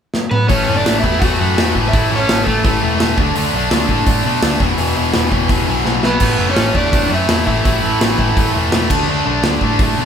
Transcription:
0.14 snare
0.31 B3 B4, mid tom
0.49 A1 A2 E3 A3 C#4 C#5, kick, open hi-hat
0.68 F#1 A2 E3 A3
0.77 D4 D5
0.85 A1 A2 E3 A3, snare, open hi-hat
1.00 A2 E4 E5
1.04 E2 E3 A3, kick
1.19 E2 A2 F#5, kick, open hi-hat
1.23 E3 A3 F#4
1.40 F#2 A2 E3 A3
1.57 E2 A2 E3 A3, snare, open hi-hat
1.75 A1 A2 E3 A3, kick
1.89 A2 E3 E5
1.93 A1 A3 E4, kick, open hi-hat
2.11 A1 A2 E3 A3
2.16 C#5
2.20 C#4
2.29 A1 A2 E3 A3, snare, open hi-hat
2.43 A1 A2 A3 A4, kick
2.47 E3 A3
2.64 A1 A2 E3 A3, kick, open hi-hat
2.82 E1 A2 E3 A3
3.00 E1 A2 E3 A3, snare, open hi-hat
3.18 D2 D3 A3 D4, kick
3.36 D2 D3 A3 D4, open hi-hat
3.54 B1 D3 A3 D4
3.71 D2 D3, snare, open hi-hat
3.75 A3 D4
3.89 A2 D3 A3 D4, kick
4.06 A2 D3, kick, open hi-hat
4.10 A3 D4
4.25 B2 D3 A3 D4
4.42 D2 D3 A3 D4, snare, open hi-hat
4.60 E1 E2 B2 E3, kick
4.78 E1 E2 B2 E3, open hi-hat
4.96 E1 E2 B2 E3
5.13 E1 E2 B2 E3, snare, open hi-hat
5.31 E1 E2 B2 E3, kick
5.49 E1 E2 B2 E3, kick, open hi-hat
5.67 B1 E2 B2 E3
5.84 B1 E2 B2 E3, snare
6.03 B1 E2 B2 E3 B3 B4, snare
6.20 A1 A2 E3 A3, kick, open hi-hat, crash
6.39 F#1 A2 E3 A3
6.49 C#4 C#5
6.56 A1 A2 E3 A3, snare, open hi-hat
6.75 E2 A2 E3 A3 D4 D5, kick
6.92 E2 A2 E3 A3, kick, open hi-hat
7.10 F#2 A2 E3 A3 E4
7.14 E5
7.28 E2 A2 E3 A3, snare, open hi-hat
7.46 A1 A2 E3 A3 E4 E5, kick
7.65 A1 A2 E3 A3, kick, open hi-hat
7.82 A1 A2 E3 A3
8.01 A1 A2 E3 A3, snare, open hi-hat
8.18 A1 A2 E3 A3, kick
8.37 A1 A2 E3 A3, kick, open hi-hat
8.54 E1 A2 E3 A3
8.72 E1 A2 E3 A3, snare, open hi-hat
8.90 D2 D3 A3 D4, kick, crash
9.07 D2 D3 A3 D4
9.26 B1 D3 A3 D4
9.42 D2 D3 A3 D4, snare, open hi-hat
9.61 A2 D3 A3 D4, kick
9.79 A2 D3 A3 D4, kick, open hi-hat
9.98 B2 D3 A3 D4

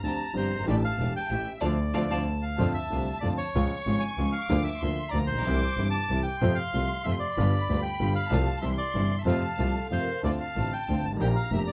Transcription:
Already playing: A#5
0.03 D2 D3 F3 C4 D4 F4 G4 A5
0.33 G1 G2 F3 C4 D4 F4 G4 C5
0.51 F#1 G1
0.60 G1 G#1
0.67 A1 A2 E3 A3 D4 G4 D5 A5
0.85 F5
0.99 E1 E2 E3 A3 D4 G4
1.16 G5
1.30 A1 A2 E3 A3 C#4 G4 E5
1.58 D5 E5 F5 A5
1.62 D2 D3 F3 A3 C4 D4 F4 D5
1.94 D2 D3 F3 A3 C4 D4 F4 D5 F5 A5
2.10 D2 D3 F3 A3 C4 D4 F4 D5 F5 A5
2.42 F5
2.58 F2 D3 F3 A3 C4 D4 F4 A5
2.74 E5
2.90 C2 C3 D3 A3 C4 D4 F4
3.21 F2 D3 F3 A3 C4 D4 F4 D5
3.38 C#5
3.54 C#2 C#3 F3 G#3 C#4 F4 C#6
3.86 G#1 G#2 C#3 F3 G#3 C#4 F4
4.00 G#5
4.18 C#2 C#3 F3 G#3 C#4 F4
4.32 F5
4.48 D2 D3 F3 A#3 D4 F4 D6
4.64 E5
4.80 D2 D3 F3 A#3 D4 F4 C6
5.11 D2 D3 F3 A#3 D4 F4 D5 A#5
5.27 A#1 C5
5.34 A1 A#1
5.41 B1 C2 G3 C4 D6
5.45 C2 C3 E3 G3 E4
5.77 G1 G2 C3 E3 G3 C4 E4
5.91 A5
6.09 C2 C3 E3 G3 C4 E4
6.23 G5
6.40 F2 C3 F3 A3 C4 F4 C6
6.55 F5
6.73 C2 C3 F3 A3 C4 F4
7.04 F2 C3 F3 A3 C4 F4 E5
7.20 D5
7.37 G1 G2 D3 G3 B3 F4 B5
7.69 D2 D3 G3 B3 F4
7.83 G5
8.00 G1 G2 D3 G3 B3 F4
8.15 F5
8.30 C2 C3 F3 A3 C4 F4 A5
8.61 C2 C3 E3 G3 C4 E4 E5 C6
8.78 D5
8.94 G1 G2 C3 E3 G3 C4 E4
9.18 E5
9.25 F2 C3 F3 A3 C4 F4 F5 A5
9.58 C2 C3 F3 A3 C4 F4 A4
9.91 F2 C3 F3 A3 C4 F4 C5 F5
10.00 A#4
10.09 C5
10.24 D2 D3 A3 C4 D4 F4 D5 A5
10.40 F5
10.56 A1 A2 D3 A3 C4 D4 F4
10.73 G5
10.88 D2 D3 A3 C4 D4 F4
11.03 G#1 A5
11.08 G1
11.13 G#1 A1
11.19 A#1 A#2 F3 A#3 D4 G4 G5 A#5
11.36 F5
11.52 F1 F2 F3 A#3 D4 G4 E5
11.67 D5

